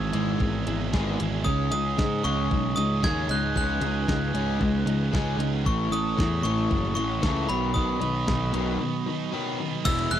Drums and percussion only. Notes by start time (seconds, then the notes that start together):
0.13 closed hi-hat
0.40 kick
0.67 closed hi-hat
0.93 kick, snare
1.20 closed hi-hat
1.46 kick
1.72 closed hi-hat
1.98 kick, snare
2.25 closed hi-hat
2.51 kick
2.77 closed hi-hat
3.03 kick, snare
3.29 closed hi-hat
3.56 kick
3.81 closed hi-hat
4.08 kick, snare
4.35 closed hi-hat
4.61 kick
4.87 closed hi-hat
5.13 kick, snare
5.40 closed hi-hat
5.66 kick
5.93 closed hi-hat
6.19 kick, snare
6.45 closed hi-hat
6.58 snare
6.71 kick
6.97 closed hi-hat
7.23 kick, snare
7.49 closed hi-hat
7.76 kick
8.02 closed hi-hat
8.28 kick, snare
8.54 closed hi-hat
9.85 kick, closed hi-hat, crash, tambourine
9.99 closed hi-hat
10.11 closed hi-hat, tambourine